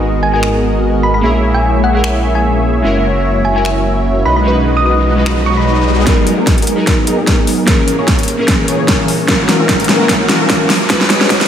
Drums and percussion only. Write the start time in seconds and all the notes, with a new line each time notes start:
0.43 finger snap
2.04 finger snap
3.65 finger snap
5.26 finger snap
6.07 kick, snare, closed hi-hat
6.27 closed hi-hat
6.47 kick, snare, closed hi-hat
6.58 closed hi-hat
6.62 closed hi-hat
6.67 closed hi-hat
6.87 kick, snare, closed hi-hat
7.07 closed hi-hat
7.27 kick, snare, closed hi-hat
7.47 open hi-hat
7.68 kick, snare, closed hi-hat
7.88 closed hi-hat
8.08 kick, snare, closed hi-hat
8.19 closed hi-hat
8.23 closed hi-hat
8.28 closed hi-hat
8.48 kick, snare, closed hi-hat
8.68 closed hi-hat
8.88 kick, snare, closed hi-hat
9.08 open hi-hat
9.28 kick, snare, closed hi-hat
9.49 snare, closed hi-hat
9.69 kick, snare, closed hi-hat
9.80 closed hi-hat
9.84 closed hi-hat
9.89 snare
10.09 kick, snare, closed hi-hat
10.29 snare, closed hi-hat
10.50 kick, snare, closed hi-hat
10.70 snare, open hi-hat
10.90 kick, snare, closed hi-hat
11.01 snare
11.10 snare, closed hi-hat
11.21 snare
11.30 kick, snare, closed hi-hat
11.41 snare, closed hi-hat